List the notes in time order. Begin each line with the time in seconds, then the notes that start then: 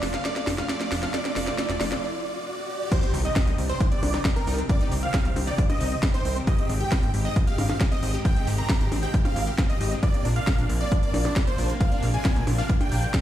Already playing: riser
0.03 F1 C3 F3 A3 D4 F4, snare, open hi-hat
0.14 A3 F5, snare, closed hi-hat
0.25 A3 D5, snare, closed hi-hat
0.36 C3 F3 A3 F4, snare, closed hi-hat
0.47 F1 D4, snare, open hi-hat, percussion blips
0.58 A3 F5, snare, closed hi-hat, percussion blips
0.69 C3 F3 A3 F4 D5, snare, closed hi-hat
0.81 A3, snare, closed hi-hat
0.91 F1 C3 F3 A3 D4 F4, snare, open hi-hat
1.03 A3 F5, snare, closed hi-hat
1.14 C3 F3 A3 F4 D5, snare, closed hi-hat
1.25 C3 F3 A3 F4, snare, closed hi-hat
1.36 F1 A3 D5, snare, open hi-hat
1.47 C3 F3 A3 F4, snare, closed hi-hat
1.58 A3 D5, snare, closed hi-hat
1.69 F1 A3, snare, closed hi-hat
1.80 F1 C3 F3 A3 F4 D5, snare, open hi-hat, percussion blips
1.92 A3, snare, closed hi-hat
2.03 D5
2.25 D5
2.47 D5
2.70 D5
2.92 C3 C4 G4 C5, kick, closed hi-hat, crash, impact
3.03 C3 D#3 C4 D4 G4, closed hi-hat
3.14 C2 D#4, open hi-hat
3.25 C3 D#3 C4 D4 G4 D#5, closed hi-hat
3.36 C4, kick, snare, closed hi-hat
3.47 C2 D#4, closed hi-hat
3.58 C2 C3 D#3 C4 D4 G4, open hi-hat
3.69 C4 C5, closed hi-hat
3.80 D#4, kick, closed hi-hat
3.92 C3 D#3 C4 D4 G4 D5, closed hi-hat
4.03 C2 C4, open hi-hat, percussion blips
4.14 D#4, snare, closed hi-hat, percussion blips
4.25 C3 D#3 C4 D4 G4, kick, snare, closed hi-hat
4.36 C4 A#4, closed hi-hat
4.47 C2 C3 D#3 D4 D#4 G4, open hi-hat
4.58 C4, closed hi-hat
4.69 C3 D#3 C4 G4 D5, kick, closed hi-hat
4.80 C3 D#3 C4 D#4 G4, closed hi-hat
4.92 C2 C4, open hi-hat
5.03 C3 D#3 C4 G4 F5, closed hi-hat
5.14 D#4, kick, snare, closed hi-hat
5.25 C2 C4, closed hi-hat
5.36 C2 C3 D#3 C4 G4, open hi-hat, percussion blips
5.47 D#4 D5, closed hi-hat
5.58 C4, kick, closed hi-hat
5.69 C3 D#3 C4 G4 D#5, closed hi-hat, percussion blips
5.81 C2 D#4, open hi-hat
5.92 C4, closed hi-hat
6.03 C3 D#3 C4 G4, kick, snare, closed hi-hat
6.14 D#4 C5, closed hi-hat
6.25 C2 C3 D#3 C4 G4, open hi-hat
6.36 C4, closed hi-hat
6.47 C3 G#3 D#4 G4 D#5, kick, closed hi-hat
6.58 C3 G#3 C4 D#4 G4, closed hi-hat
6.69 G#1 C4, open hi-hat
6.80 C3 G#3 D#4 G4 G5, closed hi-hat
6.92 C4, kick, snare, closed hi-hat
7.03 G#1 C4, closed hi-hat
7.14 G#1 C3 G#3 D#4 G4, open hi-hat
7.25 C4 D#5, closed hi-hat
7.36 C4, kick, closed hi-hat
7.47 C3 G#3 D#4 G4 F5, closed hi-hat
7.58 G#1 C4, open hi-hat, percussion blips
7.69 C4, snare, closed hi-hat, percussion blips
7.80 C3 G#3 D#4 G4, kick, snare, closed hi-hat
7.92 C4 D#5, closed hi-hat
8.02 G#1 C3 G#3 C4 D#4 G4, open hi-hat
8.14 G4, closed hi-hat
8.25 C3 G#3 C4 D#4 G4 G5, kick, closed hi-hat
8.36 C3 G#3 C4 D#4 G4, closed hi-hat
8.47 G#1 G4, open hi-hat
8.58 C3 G#3 C4 D#4 G4 A#5
8.69 C4, kick, snare, closed hi-hat
8.80 G#1 G4, closed hi-hat
8.92 G#1 C3 G#3 C4 D#4 G4, open hi-hat, percussion blips
9.03 C4 G5, closed hi-hat
9.14 G4, kick, closed hi-hat
9.25 C3 G#3 C4 D#4 G4 F5, closed hi-hat, percussion blips
9.36 G#1 C4, open hi-hat
9.47 G4, closed hi-hat
9.58 C3 G#3 C4 D#4 G4, kick, snare, closed hi-hat
9.69 C4 D#5, closed hi-hat
9.80 G#1 C3 G#3 D#4 G4, open hi-hat
9.92 C4, closed hi-hat
10.02 C3 A#3 D4 F4 D5, kick, closed hi-hat
10.14 C3 A#3 D4 F4, closed hi-hat
10.25 A#1 D4, open hi-hat
10.36 C3 A#3 D4 F4 F5, closed hi-hat
10.47 A#3, kick, snare, closed hi-hat
10.58 A#1 D4, closed hi-hat
10.69 A#1 C3 A#3 D4 F4, open hi-hat
10.81 A#3 D5, closed hi-hat
10.92 D4, kick, closed hi-hat
11.03 C3 A#3 D4 F4 D5, closed hi-hat
11.14 A#1 A#3, open hi-hat, percussion blips
11.25 D4, snare, closed hi-hat, percussion blips
11.36 C3 A#3 D4 F4, kick, snare, closed hi-hat
11.47 A#3 C5, closed hi-hat
11.58 A#1 C3 A#3 D4 F4, open hi-hat
11.69 A#3, closed hi-hat
11.80 C3 A#3 D4 F4 F5, kick, closed hi-hat
11.92 C3 A#3 D4 F4, closed hi-hat
12.03 A#1 A#3, open hi-hat
12.14 C3 A#3 D4 F4 G#5, closed hi-hat
12.25 D4, kick, snare, closed hi-hat
12.36 A#1 A#3, closed hi-hat
12.47 A#1 C3 A#3 D4 F4, open hi-hat, percussion blips
12.58 D4 F5, closed hi-hat
12.69 A#3, kick, closed hi-hat
12.81 C3 A#3 D4 F4 G5, closed hi-hat, percussion blips
12.92 A#1 D4, open hi-hat
13.03 A#3, closed hi-hat
13.14 C3 A#3 D4 F4, kick, snare, closed hi-hat